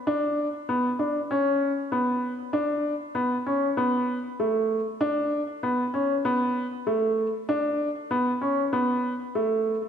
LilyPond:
\new Staff \with { instrumentName = "Upright piano" } { \time 4/4 \key a \mixolydian \tempo 4 = 97 d'4 b8 d'8 cis'4 b4 | d'4 b8 cis'8 b4 a4 | d'4 b8 cis'8 b4 a4 | d'4 b8 cis'8 b4 a4 | }